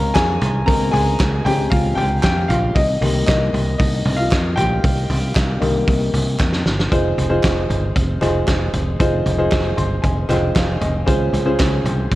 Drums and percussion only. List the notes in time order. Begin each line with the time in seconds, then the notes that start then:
0.15 kick, snare, clap, hi-hat pedal, open hi-hat
0.41 floor tom, hi-hat pedal, open hi-hat
0.68 kick, hi-hat pedal, open hi-hat
0.93 floor tom, hi-hat pedal, open hi-hat
1.19 kick, snare, clap, hi-hat pedal, open hi-hat
1.46 floor tom, hi-hat pedal, open hi-hat
1.72 kick, hi-hat pedal, open hi-hat
1.98 floor tom, hi-hat pedal, open hi-hat
2.23 kick, snare, clap, hi-hat pedal, open hi-hat
2.50 floor tom, hi-hat pedal, open hi-hat
2.76 kick, hi-hat pedal, open hi-hat
3.02 floor tom, hi-hat pedal, open hi-hat
3.28 kick, snare, clap, hi-hat pedal, open hi-hat
3.54 floor tom, hi-hat pedal, open hi-hat
3.80 kick, hi-hat pedal, open hi-hat
4.06 floor tom, hi-hat pedal, open hi-hat
4.31 kick, snare, clap, hi-hat pedal, open hi-hat
4.57 floor tom, hi-hat pedal, open hi-hat
4.84 kick, hi-hat pedal, open hi-hat
5.10 floor tom, hi-hat pedal, open hi-hat
5.35 kick, snare, clap, hi-hat pedal, open hi-hat
5.62 floor tom, hi-hat pedal, open hi-hat
5.88 kick, hi-hat pedal, open hi-hat
6.14 floor tom, hi-hat pedal, open hi-hat
6.40 kick, snare, clap
6.53 snare
6.66 snare
6.79 snare
6.92 kick, closed hi-hat
7.18 closed hi-hat, floor tom
7.43 kick, snare, clap, closed hi-hat
7.70 closed hi-hat, floor tom
7.96 kick, closed hi-hat
8.22 clap, closed hi-hat, floor tom
8.48 kick, snare, clap, closed hi-hat
8.73 closed hi-hat, floor tom
8.99 kick, closed hi-hat
9.25 closed hi-hat, floor tom
9.52 kick, snare, clap, closed hi-hat
9.78 closed hi-hat, floor tom
10.04 kick, closed hi-hat
10.30 clap, closed hi-hat, floor tom
10.56 kick, snare, clap, closed hi-hat
10.81 closed hi-hat, floor tom
11.08 kick, closed hi-hat
11.34 closed hi-hat, floor tom
11.60 kick, snare, clap, closed hi-hat
11.86 closed hi-hat, floor tom
12.12 kick, closed hi-hat